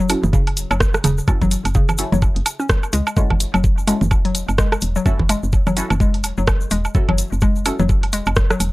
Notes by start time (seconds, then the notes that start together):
Already playing: F#1
0.09 C#4 E4 F#4 A4, closed hi-hat, low woodblock, shaker
0.23 F#1, low conga, shaker
0.33 C#3, kick, shaker
0.47 closed hi-hat, low woodblock
0.57 E1, closed hi-hat, shaker
0.71 F#1 F#3, low woodblock, shaker
0.80 kick, cross-stick, shaker
0.94 cross-stick, shaker
1.04 E1 C#3, closed hi-hat, low woodblock, shaker
1.18 shaker
1.28 F#1 C#4 E4 F#4 A4, kick, low woodblock, shaker
1.42 F#3, kick, low conga, shaker
1.51 closed hi-hat, shaker
1.65 F#1, closed hi-hat, low woodblock, shaker
1.75 C#3, kick, shaker
1.89 low conga, low woodblock, shaker
1.98 C#4 E4 F#4 A4, closed hi-hat, shaker
2.12 F#1 F#3, low conga, shaker
2.22 E1, kick, low woodblock, shaker
2.36 F#1, closed hi-hat
2.46 closed hi-hat, low woodblock, shaker
2.60 C#4, shaker
2.69 kick, cross-stick, shaker
2.83 low woodblock, shaker
2.93 C#2 G#3, closed hi-hat, shaker
3.07 low woodblock, shaker
3.17 F#1 G#3 C#4 E4 F#4 A4, kick, shaker
3.30 kick, low conga, low woodblock
3.40 closed hi-hat, shaker
3.54 F#1 F#3, low woodblock, shaker
3.64 kick, shaker
3.78 shaker
3.87 G#3 C#4 E4 F#4 A4, closed hi-hat, low woodblock, shaker
4.01 F#1, low conga, shaker
4.11 kick, low woodblock, shaker
4.25 F#3, closed hi-hat
4.35 E1, closed hi-hat, shaker
4.49 F#1, low woodblock, shaker
4.58 G#3, kick, cross-stick, shaker
4.72 cross-stick, low woodblock, shaker
4.81 E1, closed hi-hat, shaker
4.96 F#3, shaker
5.06 F#1 C#4 E4 F#4 A4, kick, low woodblock, shaker
5.19 kick, low conga
5.29 G#3, closed hi-hat, low woodblock, shaker
5.43 F#1, shaker
5.53 kick, shaker
5.67 F#3, low conga, low woodblock, shaker
5.77 C#4 E4 F#4 A4, closed hi-hat, shaker
5.90 F#1, low conga, low woodblock, shaker
6.00 G#3, kick, shaker
6.14 closed hi-hat
6.24 E1, closed hi-hat, low woodblock, shaker
6.38 F#1 F#3, shaker
6.47 kick, cross-stick, low woodblock, shaker
6.61 shaker
6.71 E1 G#3, closed hi-hat, shaker
6.85 low woodblock, shaker
6.94 F#1 C#4 E4 F#4 A4, kick, shaker
7.09 F#3, kick, low conga, low woodblock
7.18 closed hi-hat, shaker
7.32 F#1, shaker
7.41 G#3, kick, low woodblock, shaker
7.56 shaker
7.66 C#4 E4 F#4 A4, closed hi-hat, low woodblock, shaker
7.79 F#1 F#3, low conga, shaker
7.89 kick, shaker
8.03 closed hi-hat, low woodblock
8.13 E1 G#3, closed hi-hat, shaker
8.26 F#1, low woodblock, shaker
8.36 kick, cross-stick, shaker
8.50 F#3, cross-stick, shaker
8.60 E1, closed hi-hat, low woodblock, shaker